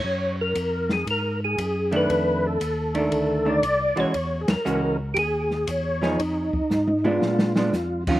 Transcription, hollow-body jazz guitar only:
1.91 D#3 A3 D4
2.95 D#3 A3 D4
3.45 D#3 A3 D4
3.96 E3 G#3 C#4 F#4
4.65 E3 G#3 C#4 F#4
6.02 F3 B3 D#4 G#4
7.04 G#3 B3 D4
7.56 G#3 B3 D4
8.08 D#3 F#3 C#4 F4

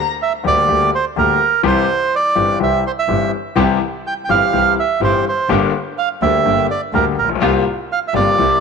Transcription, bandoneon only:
0.23 E5
0.47 D5
0.95 C5
1.18 A#4
1.67 C5
2.15 D5
2.63 E5
2.87 C5
2.99 E5
4.07 G5
4.25 G5
4.30 F5
4.80 E5
5.04 C5
5.29 C5
5.98 F5
6.22 E5
6.71 D5
6.95 A#4
7.19 A#4
7.92 F5
8.08 E5
8.16 D5

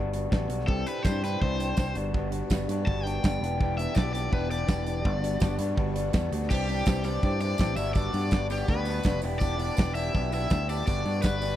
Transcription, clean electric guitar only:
Already playing: G3 B3 D4 F#4
0.12 B3 D4 F#4
0.30 G3 B3 D4 F#4
0.50 B3 D4 F#4
0.67 C3 E3 C4 D4 G4
0.86 C4 D4 G4
1.04 E3 C4 D4 G4
1.21 C4 D4 G4
1.41 C3 E3 C4 D4 G4
1.58 C4 D4 G4
1.75 C3 E3 C4 D4 G4
1.94 G3 B3 D4 F#4
2.13 G3 B3 D4 F#4
2.31 B3 D4 F#4
2.50 G3 B3 D4 F#4
2.69 B3 D4 F#4
2.86 G3 B3 D4 F#4
3.05 B3 D4 F#4
3.23 G3 B3 D4 F#4
3.41 E3 B3 D4 G4
3.59 E3 B3 D4 G4
3.78 B3 D4 G4
3.95 E3 B3 D4 G4
4.13 B3 D4 G4
4.30 E3 B3 D4 G4
4.49 B3 D4 G4
4.67 E3 B3 D4 G4
4.86 B3 D4 G4
5.03 G3 B3 D4 F#4
5.21 B3 D4 F#4
5.39 G3 B3 D4 F#4
5.58 B3 D4 F#4
5.76 G3 B3 D4 F#4
5.94 B3 D4 F#4
6.13 G3 B3 D4 F#4
6.32 B3 D4 F#4
6.50 C3 E3 C4 D4 G4
6.68 C3 E3 C4 D4 G4
6.86 C3 E3 C4 D4 G4
7.04 C3 E3 C4 D4 G4
7.22 C3 E3 C4 D4 G4
7.40 C3 E3 C4 D4 G4
7.58 C3 E3 C4 D4 G4
7.75 G3 B3 D4 F#4
7.95 G3 B3 D4 F#4
8.13 G3 B3 D4 F#4
8.30 G3 B3 D4 F#4
8.50 G3 B3 D4 F#4
8.68 G3 B3 D4 F#4
8.87 G3 B3 D4 F#4
9.04 G3 B3 D4 F#4
9.22 E3 B3 D4 G4
9.40 E3 B3 D4 G4
9.57 E3 B3 D4 G4
9.76 E3 B3 D4 G4
9.94 E3 B3 D4 G4
10.13 E3 B3 D4 G4
10.31 E3 B3 D4 G4
10.49 E3 B3 D4 G4
10.68 E3 B3 D4 G4
10.86 G3 B3 D4 F#4
11.04 G3 B3 D4 F#4
11.22 G3 B3 D4 F#4
11.40 G3 B3 D4 F#4

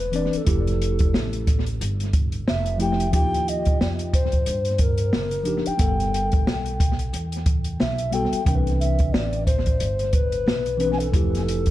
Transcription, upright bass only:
Already playing: E1
0.34 muted upright bass stroke
0.47 F1
1.14 A1
1.81 G1
2.48 F1
3.13 D#2
3.81 F2
4.47 G2
5.14 F#1
5.67 muted upright bass stroke
5.79 G1
6.47 B1
7.13 E2
7.80 B1
8.32 muted upright bass stroke
8.46 C2
9.14 A1
9.80 G1
10.46 B1
11.14 F1

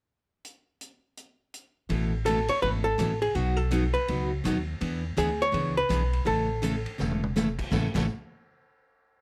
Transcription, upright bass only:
1.90 A1
2.63 G#1
2.98 A1
3.35 B1
4.09 C#2
4.46 D#2
4.81 E2
5.17 D2
5.54 C#2
5.90 B1
6.27 A1
7.00 E1
7.72 A1
7.95 A1

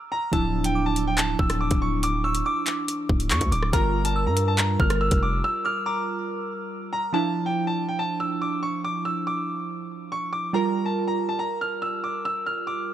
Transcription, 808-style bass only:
0.33 D1
1.39 D1
1.71 D1
3.09 C#1
3.31 F2
3.41 D2
3.52 D1
3.73 G1
4.26 G2
4.80 G1
5.12 F1

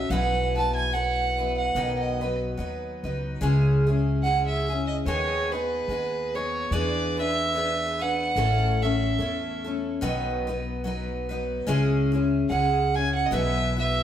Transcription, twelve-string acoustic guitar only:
Already playing: C#4 F#4 A4
0.10 B2 E3 F#3 B3 E4 B4
0.56 F#3 B3 E4 B4
0.93 F#3 B3 E4 B4
1.38 F#3 B3 E4 B4
1.75 B2 D#3 F#3 B3 D#4 B4
2.21 F#3 B3 D#4 B4
2.57 F#3 B3 D#4 B4
3.04 F#3 B3 D#4 B4
3.41 C#3 G#3 C#4 E4 G#4
3.87 C#4 E4 G#4
4.24 G#3 C#4 E4 G#4
4.69 C#4 E4 G#4
5.06 D#3 G#3 B3 D#4 G#4
5.52 B3 D#4 G#4
5.89 G#3 B3 D#4 G#4
6.35 B3 D#4 G#4
6.72 E3 B3 D4 G#4 B4
7.17 D4 G#4 B4
7.54 B3 D4 G#4 B4
7.99 D4 G#4 B4
8.36 A2 E3 A3 C#4 E4 A4
8.82 A3 C#4 E4 A4
9.18 A3 C#4 E4 A4
9.64 A3 C#4 E4 A4
10.01 B2 D#3 F#3 B3 D#4 B4
10.47 F#3 B3 D#4 B4
10.84 F#3 B3 D#4 B4
11.29 F#3 B3 D#4 B4
11.67 C#3 G#3 C#4 E4 G#4
12.12 C#4 E4 G#4
12.49 G#3 C#4 E4 G#4
12.94 C#4 E4 G#4
13.31 B2 E3 F#3 B3 E4 B4
13.77 F#3 B3 E4 B4

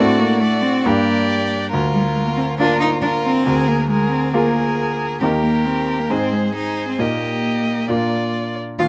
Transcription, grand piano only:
0.00 A2 A3 D4 F#4
0.86 G2 A#3 D4 G4
1.73 D2
2.60 A#3 D4 F4
3.47 D2
4.34 A#3 F4 G#4
5.23 D#2 A#3 D#4 G4
6.10 G#2 C4 D#4 G#4
6.99 A#2 A#3 D#4 G4
7.88 A#2 A#3 D4 F4
8.80 D#2

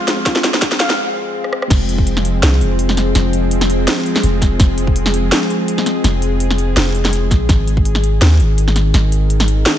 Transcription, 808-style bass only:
1.70 F1
2.43 C2
2.61 F1
3.15 F1
4.23 F1
4.60 F1
6.04 F1
6.76 F1
7.31 A#1
7.49 G#1
8.21 D#2
8.39 G#1
8.94 G#1

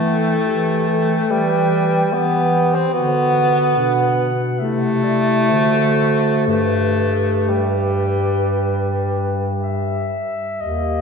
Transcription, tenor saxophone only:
Already playing: A3
1.31 G3
2.13 B3
2.75 C4
2.94 B3
4.59 A3
6.47 A3
7.49 G3
10.61 A#3

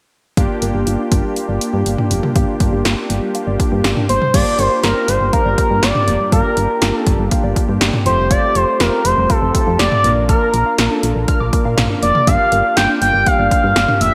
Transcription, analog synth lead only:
4.09 C5
4.34 D5
4.59 C5
4.84 A#4
5.08 C5
5.33 A#4
5.83 D5
6.33 A#4
6.97 A4
8.06 C5
8.31 D5
8.55 C5
8.80 A#4
9.05 C5
9.30 A4
9.79 D5
10.29 A#4
10.93 A4
12.02 D5
12.27 F5
12.77 G5
13.02 G5
13.27 F5
14.01 E5

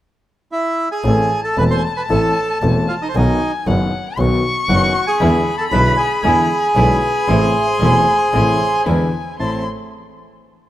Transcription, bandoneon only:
0.52 E4 E5
0.92 G#4 G#5
1.44 A4 A5
1.58 B4 B5
1.71 C5 C6
1.97 B4 B5
2.09 A4 A5
2.88 F4 F5
3.02 D#4 D#5
3.09 C5
3.16 D#4 D#5
4.69 F#4 F#5
5.07 G#4 G#5
5.58 A4 A5
5.70 B4 B5
5.97 G#4 G#5
6.23 G#4 G#5
9.40 A5

